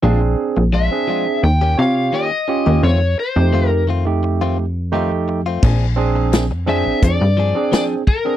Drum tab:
CC |--------|--------|x-------|
HH |--------|--------|--x-x-x-|
SD |--------|--------|--o---o-|
BD |--------|--------|o---o--o|